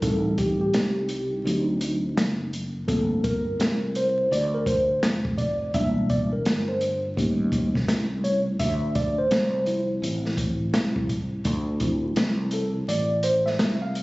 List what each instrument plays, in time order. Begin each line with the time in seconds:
0.01 fretless electric bass A1, tine electric piano G3 C4 D#4 A4, kick, closed hi-hat
0.38 tine electric piano G4, kick, closed hi-hat
0.61 tine electric piano G4
0.74 fretless electric bass C2, snare, closed hi-hat
1.09 closed hi-hat
1.44 fretless electric bass D2, tine electric piano F#3 C4 D#4, closed hi-hat
1.81 closed hi-hat
2.17 fretless electric bass F#1, snare, closed hi-hat
2.53 closed hi-hat
2.87 fretless electric bass G1, tine electric piano F3 A3 A#3 C4 A4, kick, closed hi-hat
3.24 tine electric piano A#4, kick, closed hi-hat
3.60 fretless electric bass C2, snare, closed hi-hat
3.95 tine electric piano C5, closed hi-hat
4.31 fretless electric bass D2, tine electric piano D5, closed hi-hat
4.54 tine electric piano A#4
4.66 tine electric piano C5, kick, closed hi-hat
5.03 fretless electric bass F1, snare, closed hi-hat
5.25 kick
5.38 tine electric piano D5, kick, closed hi-hat
5.74 fretless electric bass E1, tine electric piano G3 A#3 D4 E5, kick, closed hi-hat
6.10 tine electric piano D5, kick, closed hi-hat
6.33 tine electric piano A#4
6.45 fretless electric bass G1, snare, closed hi-hat
6.68 tine electric piano C5
6.81 closed hi-hat
7.17 fretless electric bass D#2, tine electric piano G3 A3 C#4, kick, closed hi-hat
7.52 kick, closed hi-hat
7.75 muted fretless electric bass stroke, kick, snare
7.88 fretless electric bass C2, snare, closed hi-hat
8.24 tine electric piano C#5, closed hi-hat
8.59 fretless electric bass D2, tine electric piano E5, kick, closed hi-hat
8.95 tine electric piano D5, kick, closed hi-hat
9.18 tine electric piano C5
9.31 fretless electric bass C2, snare, closed hi-hat
9.54 tine electric piano C5
9.66 tine electric piano F3 C4 E4, closed hi-hat
10.02 fretless electric bass A1, closed hi-hat
10.25 snare
10.37 kick, closed hi-hat
10.73 fretless electric bass C2, tine electric piano F3 C4 E4, snare, closed hi-hat
10.96 kick
11.09 kick, closed hi-hat
11.45 fretless electric bass D2, kick, closed hi-hat
11.80 tine electric piano F3 C4 E4, kick, closed hi-hat
12.16 fretless electric bass C2, snare, closed hi-hat
12.51 tine electric piano A4, closed hi-hat
12.88 fretless electric bass A1, tine electric piano D5, closed hi-hat
13.23 tine electric piano C5, closed hi-hat
13.46 tine electric piano E5, snare
13.59 fretless electric bass C2, snare, closed hi-hat
13.82 tine electric piano F5
13.95 closed hi-hat